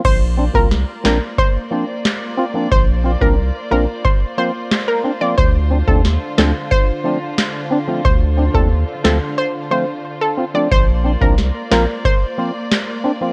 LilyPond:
<<
  \new Staff \with { instrumentName = "Synth pluck" } { \time 4/4 \key bes \major \tempo 4 = 90 c''16 r8 bes'16 r8 bes'16 r16 c''8. r4 r16 | c''16 r8 bes'16 r8 bes'16 r16 c''16 r16 c''16 r8 bes'16 r16 d''16 | c''16 r8 a'16 r8 a'16 r16 c''8. r4 r16 | c''16 r8 a'16 r8 a'16 r16 c''16 r16 c''16 r8 a'16 r16 d''16 |
c''16 r8 bes'16 r8 bes'16 r16 c''8. r4 r16 | }
  \new Staff \with { instrumentName = "String section" } { \time 4/4 \key bes \major << { <bes f' d''>1~ | <bes f' d''>1 | <d d'>1~ | <d d'>1 |
<bes d''>1 | } \\ { c''1~ | c''1~ | c''1~ | c''1~ |
c''1 | } >> }
  \new Staff \with { instrumentName = "Synth stab" } { \time 4/4 \key bes \major r8 <c' d'>16 <f bes c' f'>16 r8 <f bes c' d'>16 r8. <f bes c' d'>16 r8. <c' f'>16 <f bes c' d'>16 | r8 <c' f'>16 <f bes c' d'>16 r8 <f bes c' d'>16 r8. <f bes c' f'>16 r8. <c' d'>16 <f bes c' f'>16 | r8 <c' d'>16 <f a c' d'>16 r8 <f a c' d'>16 r8. <f a c' d'>16 r8. <c' d'>16 <f a c' f'>16 | r8 <c' d'>16 <f a c' d'>16 r8 <f a c' f'>16 r8. <f a c' f'>16 r8. <c' f'>16 <f a c' d'>16 |
r8 <c' d'>16 <f bes c' d'>16 r8 <f bes c' f'>16 r8. <f bes c' f'>16 r8. <c' d'>16 <f bes c' f'>16 | }
  \new Staff \with { instrumentName = "Sub bass" } { \clef bass \time 4/4 \key bes \major bes,,8. c,8 r16 bes,,16 r2 r16 | bes,,8. c,8 r16 bes,,16 r2 r16 | d,8. ees,8 r16 d,16 r2 r16 | d,8. ees,8 r16 d,16 r2 r16 |
bes,,8. c,8 r16 bes,,16 r2 r16 | }
  \new DrumStaff \with { instrumentName = "Drums" } \drummode { \time 4/4 <cymc bd>8. bd16 sn8 <hc sn>8 bd4 <hc sn>4 | bd8. bd16 r4 bd4 <hc sn>4 | bd8. bd16 sn8 <hc sn>8 bd4 <hc sn>4 | bd8. bd16 r8 <hc sn>8 r4 r4 |
bd8. bd16 sn8 <hc sn>8 bd4 <hc sn>4 | }
>>